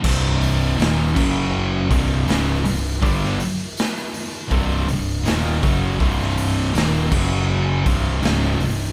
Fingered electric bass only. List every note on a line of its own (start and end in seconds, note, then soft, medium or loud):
0.05 0.75 C1 loud
0.79 1.14 D#1 loud
1.17 1.87 F#1 medium
1.91 2.26 C1 loud
2.28 2.63 C#1 loud
2.66 3.00 C1 medium
3.03 3.37 G1 loud
4.52 4.86 C1 medium
4.89 5.24 C1 medium
5.27 5.61 D#1 loud
5.64 5.98 F#1 loud
6.00 6.71 C1 loud
6.75 7.09 D#1 loud
7.11 7.82 F#1 loud
7.86 8.21 C1 loud
8.23 8.58 C#1 loud
8.60 8.92 C1 medium